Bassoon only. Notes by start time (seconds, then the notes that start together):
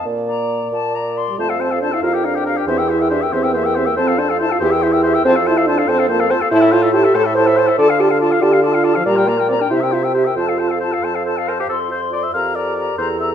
0.05 A#2
0.72 A#2
1.38 F2
2.03 F2
2.67 E2
3.33 E2
3.97 F2
4.61 E2
5.25 F2
5.88 F2
6.52 A2
7.15 A2
7.78 D3
8.41 D3
9.06 A#2
9.71 C3
10.36 F2
11.03 F2
11.69 F2
12.34 F2
12.99 E2